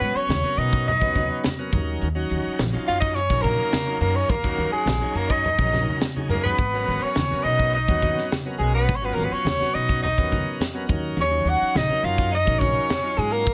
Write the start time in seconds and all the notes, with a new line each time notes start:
Already playing: F#3 B3 C#4 B4 C#5
0.01 G#2, closed hi-hat, muted conga
0.15 C#4 C#5, muted upright bass stroke
0.29 D#2, snare, closed hi-hat, high conga
0.43 F#3 B3 C#4 A#4, muted upright bass stroke
0.57 B2 D#4 D#5, closed hi-hat
0.73 kick
0.87 D#4 D#5, closed hi-hat, muted conga, low conga
1.01 D#2 F#3 B3 C#4 B4, kick
1.15 kick, closed hi-hat, high conga
1.44 snare, closed hi-hat, high conga
1.59 F#3 B3 C#4 A#4
1.72 D#2 F#3 C#4 D#4 A#4, kick, closed hi-hat, muted conga, low conga
2.01 D#2, closed hi-hat, muted conga
2.15 F#3 C#4 D#4 F#4
2.30 D#2, closed hi-hat, muted conga
2.46 muted upright bass stroke
2.59 A#1, snare, closed hi-hat, high conga
2.72 F#3 C#4 D#4 F4, muted upright bass stroke
2.87 F#2 F4 F5, closed hi-hat
3.00 D#4 D#5, kick
3.14 C#4 C#5, closed hi-hat, muted conga
3.30 A#1 F#3 C#4 D#4 A#4, kick
3.42 A#3 A#4, kick, closed hi-hat, high conga
3.72 snare, closed hi-hat, high conga
3.86 F#3 C#4 D#4 A#4
4.00 F#2 A#3 A#4, closed hi-hat, muted conga
4.15 C#4 C#5
4.29 D#2 A#3 A#4, kick, closed hi-hat, muted conga
4.43 F#3 C#4 D#4 F#4, kick
4.58 D#2, closed hi-hat, muted conga
4.72 G#3 G#4, muted upright bass stroke
4.86 A#1, snare, closed hi-hat, high conga
5.01 F#3 C#4 D#4 C#5, muted upright bass stroke
5.15 F#2 A#3 A#4, closed hi-hat
5.29 D#4 D#5, kick
5.44 closed hi-hat, muted conga, low conga
5.58 A#1 F#3 C#4 D#4 A#4, kick
5.73 snare, closed hi-hat, high conga
5.88 high conga
6.01 snare, closed hi-hat, high conga
6.16 F#3 C#4 D#4 G#4, high conga
6.29 F#2 A#3 A#4, open hi-hat, low conga
6.43 B3 B4, low conga
6.58 G#1, kick, closed hi-hat, muted conga
6.73 F#3 B3 C#4 A#4
6.88 G#1, closed hi-hat, muted conga
7.03 C#4 C#5, muted upright bass stroke
7.15 D#2, snare, closed hi-hat, high conga
7.31 F#3 B3 C#4 A#4, muted upright bass stroke
7.44 B1 D#4 D#5, closed hi-hat
7.59 kick
7.73 D#4 D#5, closed hi-hat, muted conga
7.88 D#2 F#3 B3 C#4 F#4, kick
8.02 kick, closed hi-hat, high conga
8.18 snare
8.32 snare, closed hi-hat, high conga
8.46 F#3 B3 C#4 A#4
8.59 B1 G#3 G#4, closed hi-hat, muted conga
8.74 B3 B4
8.88 G#1, kick, closed hi-hat, muted conga
8.95 C#4 C#5
9.02 F#3 B3 C#4 F4 B4
9.14 G#1 A#3 A#4
9.18 closed hi-hat, muted conga
9.25 B3 B4
9.31 C#4 C#5, muted upright bass stroke
9.45 D#2, snare, closed hi-hat, high conga
9.60 F#3 B3 C#4 F#4, muted upright bass stroke, snare
9.75 B1 D#4 D#5, closed hi-hat
9.89 kick
10.02 D#4 D#5, closed hi-hat, muted conga, low conga
10.18 D#2 F#3 B3 C#4 A#4, kick
10.32 kick, closed hi-hat, high conga
10.60 snare, closed hi-hat, high conga
10.74 F#3 B3 C#4 A#4
10.87 D#2 F#3 C#4 D#4 A#4, kick, closed hi-hat, muted conga, low conga
11.17 D#2 C#4, closed hi-hat, muted conga
11.21 C#5
11.30 F#3 C#4 D#4 C#5
11.45 D#2 F#4, closed hi-hat, muted conga
11.50 F#5
11.62 muted upright bass stroke
11.75 A#1 D#4 D#5, snare, closed hi-hat, high conga
11.89 F#3 C#4 D#4 A#4, muted upright bass stroke
12.03 F#2 F4 F5, closed hi-hat
12.18 kick
12.32 D#4 D#5, closed hi-hat, muted conga
12.45 A#1 F#3 C#4 D#4 A#4, kick
12.59 C#4 C#5, kick, closed hi-hat, high conga
12.90 snare, closed hi-hat, high conga
13.03 F#3 C#4 D#4 F4
13.18 G#2 G#3 G#4, closed hi-hat, muted conga
13.32 A#3 A#4
13.46 C#2, kick, closed hi-hat, muted conga